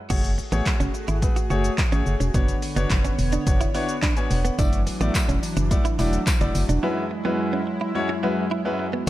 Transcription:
0.10 F#1 A3 F#4 G#4 C#5, kick, closed hi-hat, crash, shaker
0.24 closed hi-hat, shaker
0.38 muted clean electric guitar stroke, shaker
0.52 A1 A3 B3 F#4 G#4 C#5, closed hi-hat, shaker
0.66 kick, snare, clap, closed hi-hat, shaker
0.80 F#1 C#4, closed hi-hat, shaker
0.94 muted clean electric guitar stroke, shaker
1.08 G#1 E4, closed hi-hat, shaker
1.22 A3 F#4 G#4 B4, muted clean electric guitar stroke, kick, closed hi-hat, shaker
1.36 F#4, closed hi-hat, shaker
1.50 F#1 A3 F#4 G#4 C#5, shaker
1.64 closed hi-hat, shaker
1.78 kick, snare, clap, closed hi-hat, shaker
1.92 G#1 A3 C#4 F#4 G#4 C#5, closed hi-hat, shaker
2.06 F#1, muted clean electric guitar stroke, shaker
2.20 E1 C#4, closed hi-hat, shaker
2.34 F#1 D3 B3 D4 F#4 C#5, kick, closed hi-hat, shaker
2.48 closed hi-hat, shaker
2.62 muted clean electric guitar stroke, open hi-hat, shaker
2.76 F#1 B3 D4 F#4 C#5, closed hi-hat, shaker
2.90 F#1, kick, snare, clap, closed hi-hat, shaker
3.05 C#4, closed hi-hat, shaker
3.19 E1, muted clean electric guitar stroke, open hi-hat, shaker
3.32 D4, closed hi-hat, shaker
3.46 F#1 B3 D4 F#4 C#5, muted clean electric guitar stroke, kick, closed hi-hat, shaker
3.61 E4, closed hi-hat, shaker
3.75 B3 D4 E4 F#4 C#5, open hi-hat, shaker
3.89 closed hi-hat, shaker
4.02 D4 B5, kick, snare, clap, closed hi-hat, shaker
4.17 B3 D4 F#4 C#5 G#5, closed hi-hat, shaker
4.31 E1 F#5, muted clean electric guitar stroke, open hi-hat, shaker
4.45 B3, closed hi-hat, shaker
4.59 F#1 E3 F#3 A3 D4 E4 F#4 D5, kick, closed hi-hat, tambourine, shaker
4.73 closed hi-hat, shaker
4.87 muted clean electric guitar stroke, open hi-hat, tambourine, shaker
5.01 A1 A3 B3 E4 F#4 D5, closed hi-hat, shaker
5.15 kick, snare, clap, closed hi-hat, tambourine, shaker
5.29 E1 C#4, closed hi-hat, shaker
5.43 muted clean electric guitar stroke, open hi-hat, tambourine, shaker
5.57 F#1 D4, closed hi-hat, shaker
5.71 A3 E4 F#4 D5, muted clean electric guitar stroke, kick, closed hi-hat, shaker
5.85 E4, closed hi-hat, shaker
5.99 E1 A3 E4 F#4 D5, open hi-hat, tambourine, shaker
6.13 closed hi-hat, shaker
6.27 kick, snare, clap, closed hi-hat, tambourine, shaker
6.41 F#1 A3 D4 E4 F#4 D5, closed hi-hat, shaker
6.55 F#1, muted clean electric guitar stroke, open hi-hat, tambourine, shaker
6.69 E1 D4, closed hi-hat, shaker
6.83 F#2 G#3 E4 F#4 B4
7.11 muted clean electric guitar stroke
7.25 F#2 G#3 B3 E4 F#4 B4
7.53 C#4
7.67 muted clean electric guitar stroke
7.81 E4
7.95 F#2 G#3 E4 F#4 C#5, muted clean electric guitar stroke
8.09 F#4
8.23 F#2 G#3 E4 F#4 B4
8.51 E4
8.65 F#2 G#3 E4 F#4 B4
8.79 muted clean electric guitar stroke
8.93 B3

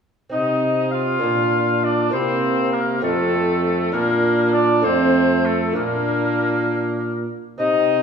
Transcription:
0.29 C3 C4 D#4 D#5
0.91 F4 F5
1.19 A#2 A#3 D4
1.23 A#2
1.84 D4 D5
2.10 C3 A#3 C4 E4 C5
2.14 A#3 C4
2.72 A#3 A#4
3.00 F2 A3 C4 F4 A4
3.92 A#2 A#3 D4 F4 A#4
4.54 D4 D5
4.82 F2 A3 C4 F4 C5
4.86 C4
5.45 A3 A4
5.73 A#2 A#3 D4 F4 A#4
7.58 C3 C4 D#4 D#5

